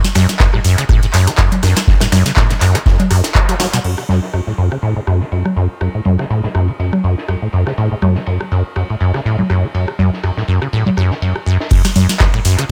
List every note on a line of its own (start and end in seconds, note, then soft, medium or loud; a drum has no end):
0.04 snare medium
0.04 closed hi-hat medium
0.15 0.27 F#2 loud
0.15 finger snap medium
0.15 cross-stick medium
0.15 open hi-hat loud
0.15 ride medium
0.15 low conga medium
0.29 snare soft
0.29 closed hi-hat medium
0.40 0.48 F#2 medium
0.40 kick loud
0.40 snare loud
0.40 clap loud
0.40 ride medium
0.54 0.60 A2 medium
0.54 cross-stick medium
0.64 0.76 F#2 loud
0.64 open hi-hat loud
0.64 ride medium
0.78 0.84 C#3 medium
0.78 finger snap medium
0.78 closed hi-hat medium
0.89 1.00 A2 loud
0.89 kick loud
0.89 cross-stick medium
0.89 ride medium
1.03 1.06 A2 medium
1.03 closed hi-hat soft
1.03 ride soft
1.13 1.29 F#2 loud
1.13 clap medium
1.13 open hi-hat loud
1.13 ride medium
1.27 1.31 F#3 medium
1.27 cross-stick medium
1.27 snare soft
1.27 closed hi-hat medium
1.38 1.50 F#2 medium
1.38 kick loud
1.38 snare loud
1.38 clap loud
1.38 ride medium
1.52 closed hi-hat medium
1.52 low conga medium
1.63 1.74 F#2 loud
1.63 cross-stick medium
1.63 snare loud
1.63 open hi-hat loud
1.63 ride medium
1.76 finger snap medium
1.76 snare medium
1.76 snare loud
1.76 closed hi-hat medium
1.76 ride medium
1.88 1.95 F#2 medium
1.88 kick loud
1.88 snare loud
1.88 ride medium
2.01 2.07 A2 medium
2.01 cross-stick medium
2.01 snare loud
2.01 snare medium
2.01 closed hi-hat medium
2.01 ride medium
2.12 2.23 F#2 loud
2.12 finger snap medium
2.12 snare loud
2.12 open hi-hat loud
2.12 ride medium
2.12 low conga medium
2.26 2.32 C#3 medium
2.26 snare soft
2.26 closed hi-hat medium
2.36 2.48 A2 loud
2.36 kick loud
2.36 cross-stick medium
2.36 snare loud
2.36 clap loud
2.36 ride medium
2.50 2.54 A2 medium
2.50 snare soft
2.50 closed hi-hat soft
2.61 2.76 F#2 loud
2.61 clap medium
2.61 open hi-hat loud
2.61 ride medium
2.75 2.79 F#3 medium
2.75 finger snap medium
2.75 cross-stick medium
2.75 closed hi-hat medium
2.75 ride soft
2.86 2.97 F#2 medium
2.86 kick loud
2.86 snare loud
2.86 ride medium
3.00 closed hi-hat soft
3.00 low conga medium
3.11 3.22 F#2 loud
3.11 cross-stick medium
3.11 open hi-hat loud
3.11 ride medium
3.24 snare loud
3.24 closed hi-hat medium
3.24 ride medium
3.35 3.40 F#2 medium
3.35 kick loud
3.35 clap loud
3.49 3.55 F#3 loud
3.49 cross-stick medium
3.49 closed hi-hat medium
3.49 ride medium
3.60 3.67 F#3 loud
3.60 snare medium
3.60 snare loud
3.60 open hi-hat loud
3.60 ride medium
3.73 3.79 B2 loud
3.73 snare medium
3.73 closed hi-hat medium
3.84 3.96 F#2 medium
3.84 crash medium
3.84 ride medium
3.98 cross-stick medium
4.09 4.20 F#2 loud
4.09 ride medium
4.09 low conga medium
4.23 snare soft
4.33 4.41 F#2 medium
4.33 cross-stick medium
4.33 ride medium
4.47 4.53 A2 medium
4.57 4.69 F#2 loud
4.57 ride medium
4.72 4.78 C#3 medium
4.72 cross-stick medium
4.82 4.94 A2 loud
4.82 ride medium
4.96 5.00 A2 medium
4.96 ride soft
5.07 5.22 F#2 loud
5.07 cross-stick medium
5.07 ride medium
5.21 5.25 F#3 medium
5.21 snare soft
5.32 5.43 F#2 medium
5.32 ride medium
5.46 cross-stick medium
5.46 low conga medium
5.56 5.68 F#2 loud
5.56 ride medium
5.81 5.89 F#2 medium
5.81 cross-stick medium
5.81 ride medium
5.95 6.01 A2 medium
6.05 6.17 F#2 loud
6.05 ride medium
6.05 low conga medium
6.19 6.25 C#3 medium
6.19 cross-stick medium
6.19 snare soft
6.30 6.41 A2 loud
6.30 ride medium
6.43 6.47 A2 medium
6.43 snare soft
6.55 6.70 F#2 loud
6.55 cross-stick medium
6.55 ride medium
6.68 6.72 F#3 medium
6.68 ride soft
6.79 6.91 F#2 medium
6.79 ride medium
6.93 cross-stick medium
6.93 ride soft
6.93 low conga medium
7.04 7.15 F#2 loud
7.04 ride medium
7.18 snare soft
7.28 7.36 F#2 medium
7.28 cross-stick medium
7.28 ride medium
7.42 7.48 A2 medium
7.53 7.64 F#2 loud
7.53 ride medium
7.67 7.73 C#3 medium
7.67 cross-stick medium
7.67 snare soft
7.78 7.89 A2 loud
7.78 ride medium
7.91 7.95 A2 medium
8.02 8.18 F#2 loud
8.02 cross-stick medium
8.02 ride medium
8.02 low conga loud
8.15 8.20 F#3 medium
8.15 snare soft
8.26 8.38 F#2 medium
8.26 ride medium
8.41 cross-stick medium
8.52 8.63 F#2 loud
8.52 ride medium
8.76 8.84 F#2 medium
8.76 cross-stick medium
8.76 ride medium
8.90 8.96 A2 medium
8.90 ride soft
9.00 9.12 F#2 loud
9.00 ride medium
9.14 9.20 C#3 medium
9.14 cross-stick medium
9.14 snare soft
9.25 9.37 A2 loud
9.25 ride medium
9.39 9.43 A2 medium
9.39 low conga medium
9.50 9.65 F#2 loud
9.50 cross-stick medium
9.50 ride medium
9.64 9.67 F#3 medium
9.74 9.86 F#2 medium
9.74 ride medium
9.88 cross-stick medium
9.99 10.10 F#2 loud
9.99 ride medium
9.99 low conga medium
10.13 snare soft
10.23 10.31 F#2 medium
10.23 cross-stick medium
10.23 ride medium
10.37 10.43 A2 medium
10.37 snare soft
10.48 10.59 F#2 loud
10.48 ride medium
10.62 10.68 C#3 medium
10.62 cross-stick medium
10.62 ride soft
10.73 10.84 A2 loud
10.73 ride medium
10.86 10.90 A2 medium
10.86 ride soft
10.86 low conga medium
10.97 11.12 F#2 loud
10.97 cross-stick medium
10.97 ride medium
11.11 11.15 F#3 medium
11.11 snare soft
11.22 11.33 F#2 medium
11.22 ride medium
11.36 cross-stick medium
11.46 11.58 F#2 loud
11.46 ride medium
11.60 snare medium
11.71 11.82 F#2 medium
11.71 kick loud
11.71 crash loud
11.71 ride loud
11.85 cross-stick medium
11.85 snare medium
11.85 closed hi-hat medium
11.96 12.07 F#2 loud
11.96 open hi-hat loud
11.96 ride medium
11.96 low conga medium
12.09 snare medium
12.09 snare soft
12.09 closed hi-hat medium
12.20 12.28 F#2 medium
12.20 kick loud
12.20 cross-stick medium
12.20 snare loud
12.20 clap loud
12.20 ride medium
12.34 12.40 A2 medium
12.34 finger snap medium
12.45 12.56 F#2 loud
12.45 open hi-hat loud
12.45 ride medium
12.59 12.65 C#3 medium
12.59 cross-stick medium
12.59 closed hi-hat medium